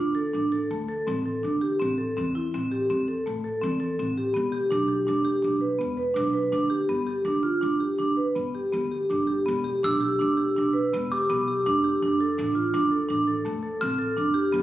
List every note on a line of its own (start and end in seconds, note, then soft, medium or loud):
0.00 0.30 D2 medium
0.15 0.27 A4 medium
0.33 0.67 A1 medium
0.33 0.45 D4 medium
0.52 0.64 A4 medium
0.71 1.03 D2 medium
0.71 0.82 A3 medium
0.89 1.00 A4 medium
1.07 1.40 A1 medium
1.07 1.19 C4 medium
1.26 1.37 A4 medium
1.43 1.77 D2 medium
1.43 1.55 D4 medium
1.61 1.73 G4 medium
1.80 2.14 A1 medium
1.80 1.92 C4 medium
1.98 2.10 A4 medium
2.17 2.50 E2 medium
2.17 2.29 C4 medium
2.35 2.47 E4 medium
2.54 2.86 A1 medium
2.54 2.66 C4 medium
2.71 2.83 G4 medium
2.90 3.22 E2 medium
2.90 3.02 C4 medium
3.08 3.20 A4 medium
3.26 3.59 A1 medium
3.26 3.38 A3 medium
3.44 3.56 A4 medium
3.62 3.95 E2 medium
3.62 3.74 C4 medium
3.80 3.92 A4 medium
3.99 4.31 A1 medium
3.99 4.11 C4 medium
4.17 4.29 G4 medium
4.34 4.68 E1 medium
4.34 4.46 B3 medium
4.52 4.64 G4 medium
4.71 5.04 B1 medium
4.71 4.82 D4 medium
4.88 5.00 G4 medium
5.07 5.40 E1 medium
5.07 5.19 D4 medium
5.25 5.36 G4 medium
5.42 5.76 B1 medium
5.42 5.54 D4 medium
5.61 5.73 B4 medium
5.79 6.13 E1 medium
5.79 5.90 B3 medium
5.97 6.09 B4 medium
6.14 6.48 B1 medium
6.14 6.26 D4 medium
6.33 6.45 B4 medium
6.52 6.85 D2 medium
6.52 6.64 D4 medium
6.70 6.82 G4 medium
6.89 7.21 G1 medium
6.89 7.00 B3 medium
7.07 7.18 G4 medium
7.25 7.57 D2 medium
7.25 7.37 D4 medium
7.43 7.55 F4 medium
7.61 7.95 G1 medium
7.61 7.73 D4 medium
7.80 7.92 G4 medium
7.98 8.32 D2 medium
7.98 8.10 D4 medium
8.17 8.29 B4 medium
8.36 8.69 G1 medium
8.36 8.47 B3 medium
8.54 8.66 G4 medium
8.72 9.06 D2 medium
8.72 8.84 B3 medium
8.92 9.03 G4 medium
9.10 9.43 G1 medium
9.10 9.22 D4 medium
9.27 9.39 G4 medium
9.46 9.80 E1 medium
9.46 9.58 B3 medium
9.64 9.76 G4 medium
9.83 10.17 B1 medium
9.83 9.95 D4 medium
9.83 10.78 E6 soft
10.01 10.13 G4 medium
10.19 10.53 E1 medium
10.19 10.31 D4 medium
10.37 10.49 G4 medium
10.57 10.90 B1 medium
10.57 10.68 D4 medium
10.73 10.85 B4 medium
10.93 11.26 E1 medium
10.93 11.05 B3 medium
11.12 11.23 G4 medium
11.12 12.05 D6 medium
11.30 11.62 B1 medium
11.30 11.41 B3 medium
11.48 11.59 G4 medium
11.66 11.98 E1 medium
11.66 11.78 D4 medium
11.84 11.96 G4 medium
12.02 12.34 F1 medium
12.02 12.14 D4 medium
12.21 12.32 A4 medium
12.38 12.70 A1 medium
12.38 12.49 D4 medium
12.55 12.67 F4 medium
12.74 13.06 F1 medium
12.74 12.85 D4 medium
12.91 13.03 A4 medium
13.09 13.42 A1 medium
13.09 13.21 D4 medium
13.28 13.39 A4 medium
13.45 13.78 F1 medium
13.45 13.57 A3 medium
13.63 13.74 A4 medium
13.81 14.14 A1 medium
13.81 13.93 C4 medium
13.81 14.63 F6 medium
13.98 14.10 A4 medium
14.17 14.50 F1 medium
14.17 14.28 D4 medium
14.34 14.46 G4 medium
14.52 14.63 E1 medium
14.52 14.63 B3 medium